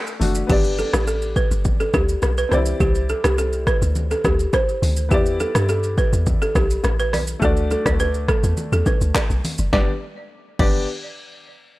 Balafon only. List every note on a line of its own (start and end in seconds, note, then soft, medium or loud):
0.00 0.11 D5 medium
0.50 0.59 G4 medium
0.79 0.88 A4 medium
0.94 1.03 G4 medium
1.08 1.17 A4 medium
1.36 1.46 B4 medium
1.80 1.89 A4 medium
1.94 2.04 G4 medium
2.38 2.47 B4 medium
2.52 2.61 C5 medium
2.81 2.90 G4 medium
3.10 3.19 A4 medium
3.25 3.33 G4 medium
3.38 3.48 A4 medium
3.67 3.77 B4 medium
4.11 4.20 A4 medium
4.25 4.35 G4 medium
4.54 4.72 C5 medium
5.11 5.21 G4 medium
5.40 5.55 A4 medium
5.55 5.64 G4 medium
5.69 5.79 A4 medium
5.98 6.08 B4 medium
6.42 6.51 A4 medium
6.56 6.65 G4 medium
7.00 7.08 B4 medium
7.14 7.23 D5 medium
7.42 7.52 A4 medium
7.71 7.81 A4 medium
7.86 7.95 D5 medium
8.00 8.10 B4 medium
8.29 8.38 A4 medium
8.73 8.82 A4 medium
8.87 8.96 B4 medium
9.16 9.34 D5 medium
9.73 9.89 D5 medium
10.60 10.86 D5 medium